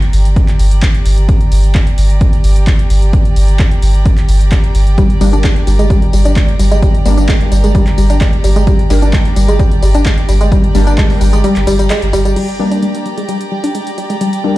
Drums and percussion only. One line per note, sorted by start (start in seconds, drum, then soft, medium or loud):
0.02 closed hi-hat medium
0.13 open hi-hat loud
0.25 closed hi-hat medium
0.36 kick loud
0.36 closed hi-hat medium
0.48 clap soft
0.48 closed hi-hat medium
0.59 open hi-hat loud
0.71 closed hi-hat medium
0.82 kick loud
0.82 clap loud
0.82 closed hi-hat medium
0.95 closed hi-hat medium
1.06 open hi-hat loud
1.18 closed hi-hat medium
1.29 kick loud
1.29 closed hi-hat medium
1.41 closed hi-hat medium
1.52 open hi-hat loud
1.64 closed hi-hat medium
1.75 kick loud
1.75 clap loud
1.75 closed hi-hat medium
1.87 closed hi-hat medium
1.98 open hi-hat loud
2.10 closed hi-hat medium
2.21 kick loud
2.21 closed hi-hat medium
2.33 closed hi-hat medium
2.44 open hi-hat loud
2.56 closed hi-hat medium
2.67 kick loud
2.67 clap loud
2.67 closed hi-hat medium
2.79 closed hi-hat medium
2.90 open hi-hat loud
3.02 closed hi-hat medium
3.13 kick loud
3.13 closed hi-hat medium
3.25 closed hi-hat medium
3.36 open hi-hat loud
3.48 closed hi-hat medium
3.59 kick loud
3.59 clap loud
3.59 closed hi-hat medium
3.71 closed hi-hat medium
3.82 open hi-hat loud
3.94 closed hi-hat soft
4.06 kick loud
4.06 closed hi-hat medium
4.18 clap soft
4.18 closed hi-hat medium
4.29 open hi-hat loud
4.41 closed hi-hat medium
4.52 kick loud
4.52 clap loud
4.52 closed hi-hat medium
4.64 closed hi-hat medium
4.75 open hi-hat loud
4.87 closed hi-hat soft
4.98 kick loud
4.98 closed hi-hat medium
4.98 tambourine soft
5.10 closed hi-hat medium
5.21 open hi-hat loud
5.21 tambourine medium
5.33 closed hi-hat soft
5.33 tambourine soft
5.44 kick loud
5.44 clap loud
5.44 closed hi-hat medium
5.44 tambourine soft
5.56 closed hi-hat soft
5.67 open hi-hat loud
5.67 tambourine medium
5.79 closed hi-hat soft
5.79 tambourine soft
5.90 kick loud
5.90 closed hi-hat medium
5.90 tambourine soft
6.02 closed hi-hat medium
6.13 open hi-hat loud
6.13 tambourine medium
6.25 closed hi-hat medium
6.25 tambourine soft
6.36 kick loud
6.36 clap loud
6.36 closed hi-hat medium
6.48 closed hi-hat soft
6.59 open hi-hat loud
6.59 tambourine medium
6.71 closed hi-hat soft
6.71 tambourine soft
6.82 kick loud
6.82 closed hi-hat medium
6.82 tambourine soft
6.95 closed hi-hat medium
7.06 open hi-hat loud
7.06 tambourine medium
7.18 closed hi-hat medium
7.18 tambourine soft
7.29 kick loud
7.29 clap loud
7.29 closed hi-hat medium
7.41 closed hi-hat medium
7.52 open hi-hat medium
7.52 tambourine medium
7.64 closed hi-hat medium
7.64 tambourine soft
7.75 kick loud
7.75 closed hi-hat medium
7.75 tambourine soft
7.87 clap soft
7.87 closed hi-hat medium
7.98 open hi-hat loud
7.98 tambourine medium
8.10 closed hi-hat medium
8.10 tambourine soft
8.21 kick loud
8.21 clap loud
8.21 closed hi-hat medium
8.21 tambourine soft
8.33 closed hi-hat soft
8.44 open hi-hat loud
8.44 tambourine medium
8.56 closed hi-hat soft
8.56 tambourine soft
8.67 kick loud
8.67 closed hi-hat medium
8.67 tambourine soft
8.79 closed hi-hat medium
8.90 open hi-hat loud
8.90 tambourine medium
9.02 closed hi-hat medium
9.02 tambourine soft
9.13 kick loud
9.13 clap loud
9.13 closed hi-hat medium
9.13 tambourine soft
9.25 closed hi-hat medium
9.36 open hi-hat loud
9.36 tambourine medium
9.48 closed hi-hat medium
9.48 tambourine soft
9.59 kick loud
9.59 closed hi-hat medium
9.59 tambourine soft
9.71 closed hi-hat medium
9.83 open hi-hat loud
9.83 tambourine medium
9.95 closed hi-hat medium
9.95 tambourine soft
10.06 kick loud
10.06 clap loud
10.06 closed hi-hat medium
10.18 closed hi-hat medium
10.29 open hi-hat medium
10.29 tambourine medium
10.41 closed hi-hat medium
10.41 tambourine soft
10.52 kick loud
10.52 closed hi-hat medium
10.52 tambourine soft
10.64 closed hi-hat medium
10.75 open hi-hat loud
10.75 tambourine medium
10.87 closed hi-hat medium
10.87 tambourine soft
10.98 kick loud
10.98 clap loud
10.98 closed hi-hat medium
11.10 open hi-hat medium
11.21 open hi-hat loud
11.21 tambourine medium
11.33 closed hi-hat medium
11.33 tambourine soft
11.44 closed hi-hat medium
11.44 tambourine soft
11.56 clap soft
11.56 closed hi-hat medium
11.67 open hi-hat loud
11.67 tambourine medium
11.79 closed hi-hat medium
11.79 tambourine soft
11.90 clap loud
11.90 closed hi-hat medium
11.90 tambourine soft
12.02 closed hi-hat medium
12.13 open hi-hat medium
12.13 tambourine medium
12.25 closed hi-hat medium
12.25 tambourine soft
12.36 closed hi-hat medium
12.36 crash medium
12.48 closed hi-hat medium
12.72 closed hi-hat medium
12.83 closed hi-hat medium
12.95 closed hi-hat medium
13.06 closed hi-hat soft
13.18 closed hi-hat medium
13.29 closed hi-hat medium
13.41 closed hi-hat medium
13.64 closed hi-hat medium
13.75 closed hi-hat medium
13.87 closed hi-hat medium
13.98 closed hi-hat medium
14.10 closed hi-hat medium
14.21 closed hi-hat medium
14.33 closed hi-hat medium